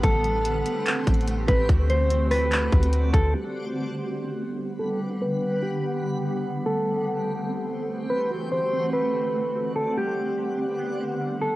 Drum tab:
HH |x-----x-----x-----x-----x-----x-x-x-x-----x-----|x-----x-----x-----o-----x-----x--x--x-----x-----|------------------------------------------------|------------------------------------------------|
CP |------------------------x-----------------------|------------------------x-----------------------|------------------------------------------------|------------------------------------------------|
SD |------------------------------------------------|------------------r-----------------------------|------------------------------------------------|------------------------------------------------|
BD |o-----------------------------o-----------o-----|o-----------------------------o-----------o-----|------------------------------------------------|------------------------------------------------|

HH |------------------------------------------------|------------------------------------------------|------------------------------------------------|
CP |------------------------------------------------|------------------------------------------------|------------------------------------------------|
SD |------------------------------------------------|------------------------------------------------|------------------------------------------------|
BD |------------------------------------------------|------------------------------------------------|------------------------------------------------|